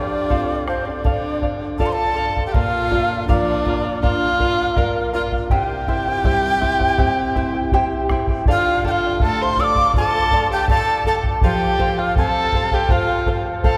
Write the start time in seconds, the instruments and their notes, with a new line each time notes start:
Already playing: nylon-string guitar F2, violin D4, charango A4 C5, quena D5
0.10 charango C5 F5
0.29 nylon-string guitar C4 F4 A4, charango A4 C5 F5, bombo low
0.67 violin C4, charango A4 C5 F5, quena C5, bombo rim
0.86 violin D4, charango C5 F5, quena D5
1.04 nylon-string guitar D3, charango A4 D5 F5, bombo low
1.42 charango A4 D5 F5, bombo low
1.61 charango D5 F5
1.78 nylon-string guitar D4 F4 A4, charango A4 D5 F5, violin A4, quena A5, bombo low
1.86 violin C5, quena C6
1.93 violin A4, quena A5
2.15 charango A4 D5 F5
2.35 charango D5 F5, bombo low
2.46 violin G4, quena G5
2.52 nylon-string guitar A#2, violin F4, charango A#4 D5 F5, quena F5, bombo low
2.91 nylon-string guitar F4, charango A#4 D5 F5, bombo low
3.09 charango D5 F5
3.28 nylon-string guitar F3, violin D4, charango A#4 D5 F5, quena D5, bombo low
3.65 nylon-string guitar F4, charango A#4 D5 F5, bombo low
3.85 charango D5 F5
4.03 nylon-string guitar D4, violin F4, charango A#4 D5 F5, quena F5, bombo low
4.39 nylon-string guitar F4, charango A#4 D5 F5, bombo low
4.58 charango D5 F5
4.76 charango A#4 D5 F5, nylon-string guitar A#4, bombo low
5.13 nylon-string guitar F4, violin F4, charango A#4 D5 F5, quena F5
5.32 charango D5 F5, bombo low
5.50 nylon-string guitar C3, charango E4 G4 C5 E5 G5, violin G4, quena G5, bombo low
5.87 nylon-string guitar E4, charango E4 C5 E5 G5, bombo low
6.07 charango E4 C5 G5
6.24 nylon-string guitar G3, charango E4 G4 C5 E5 G5, bombo low
6.61 charango E4 C5 E5 G5, nylon-string guitar E4, bombo low
6.79 charango E4 C5 G5, bombo low
6.98 nylon-string guitar C4, charango E4 G4 C5 E5 G5, bombo low
7.35 charango E4 C5 E5 G5, nylon-string guitar E4, bombo low
7.54 charango E4 C5 G5
7.72 charango E4 G4 C5 E5 G5, nylon-string guitar G4, bombo low
8.09 charango E4 C5 E5 G5, nylon-string guitar E4, bombo rim, bombo low
8.27 charango E4 C5 G5, bombo low
8.45 nylon-string guitar D3, charango A4 D5 F5, bombo low
8.50 violin F4, quena F5
8.84 violin F4, charango A4 D5 F5, nylon-string guitar A4, quena G5, bombo low
8.91 quena F5
9.04 charango D5 F5
9.20 nylon-string guitar A3, charango A4 D5 F5, violin A4, quena A5, bombo low
9.42 violin C5, quena C6
9.56 nylon-string guitar A4, charango A4 D5, violin D5, quena E6, bombo low
9.61 charango F5, quena D6
9.75 charango F5, bombo low
9.79 charango D5
9.94 nylon-string guitar F4, violin A4, charango A4 D5, quena A5, bombo low
9.98 charango F5
10.31 nylon-string guitar A4, charango A4 D5 F5, bombo low
10.51 violin G4, charango D5 F5, quena G5
10.68 charango A4 D5 F5, violin A4, nylon-string guitar D5, quena A5, bombo low
11.04 charango A4 D5 F5, nylon-string guitar A4, violin A4, quena A5, bombo low
11.24 charango D5 F5, bombo low
11.41 nylon-string guitar F3, violin G4, charango A4 C5 F5, quena G5, bombo low
11.79 charango A4 C5 F5, nylon-string guitar C5, bombo low
11.98 violin F4, charango C5 F5, quena F5
12.16 nylon-string guitar C4, violin A4, charango A4 C5 F5, quena A5, bombo low
12.52 charango A4 C5 F5, nylon-string guitar C5, bombo low
12.71 violin G4, charango C5 F5, quena G5, bombo low
12.89 violin F4, charango A4 C5 F5, nylon-string guitar A4, quena F5, bombo low
13.26 charango A4 C5 F5, nylon-string guitar C5, bombo low
13.46 charango C5 F5
13.64 charango A4 C5 F5, nylon-string guitar A4, violin A4, quena A5, bombo low